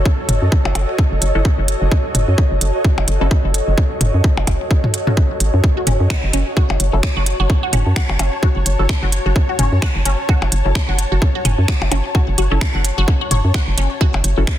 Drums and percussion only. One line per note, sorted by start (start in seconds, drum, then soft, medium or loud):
0.05 kick loud
0.29 closed hi-hat medium
0.29 mid tom medium
0.52 kick loud
0.65 percussion blips medium
0.75 closed hi-hat medium
0.75 percussion blips medium
0.98 kick loud
1.22 closed hi-hat medium
1.45 kick loud
1.68 closed hi-hat medium
1.92 kick loud
2.15 closed hi-hat medium
2.15 mid tom medium
2.38 kick loud
2.61 closed hi-hat medium
2.85 kick loud
2.98 percussion blips medium
3.08 closed hi-hat medium
3.31 kick loud
3.54 closed hi-hat medium
3.78 kick loud
4.01 closed hi-hat medium
4.01 mid tom medium
4.24 kick loud
4.37 percussion blips medium
4.47 kick medium
4.47 closed hi-hat medium
4.47 percussion blips medium
4.71 kick loud
4.84 mid tom medium
4.94 closed hi-hat medium
5.07 mid tom medium
5.17 kick loud
5.40 closed hi-hat medium
5.64 kick loud
5.87 closed hi-hat medium
5.87 mid tom medium
6.10 finger snap medium
6.10 kick loud
6.33 closed hi-hat medium
6.57 kick loud
6.70 percussion blips medium
6.80 closed hi-hat medium
7.03 finger snap medium
7.03 kick loud
7.26 closed hi-hat medium
7.50 kick loud
7.73 closed hi-hat medium
7.73 mid tom medium
7.96 finger snap loud
7.96 kick loud
8.09 percussion blips medium
8.19 closed hi-hat medium
8.19 percussion blips medium
8.43 kick loud
8.66 closed hi-hat medium
8.89 finger snap medium
8.89 kick loud
9.12 closed hi-hat medium
9.36 kick loud
9.59 closed hi-hat medium
9.59 mid tom medium
9.82 finger snap medium
9.82 kick loud
10.05 closed hi-hat medium
10.29 kick loud
10.42 percussion blips medium
10.52 closed hi-hat medium
10.75 finger snap medium
10.75 kick loud
10.99 closed hi-hat medium
11.22 kick loud
11.45 closed hi-hat medium
11.45 mid tom medium
11.68 finger snap medium
11.68 kick loud
11.82 percussion blips medium
11.92 closed hi-hat medium
11.92 percussion blips medium
12.15 kick loud
12.38 closed hi-hat medium
12.61 finger snap medium
12.61 kick loud
12.85 closed hi-hat medium
13.08 kick loud
13.31 closed hi-hat medium
13.31 mid tom medium
13.54 finger snap medium
13.54 kick loud
13.78 closed hi-hat medium
14.01 kick loud
14.14 percussion blips medium
14.24 closed hi-hat medium
14.47 finger snap medium
14.47 kick loud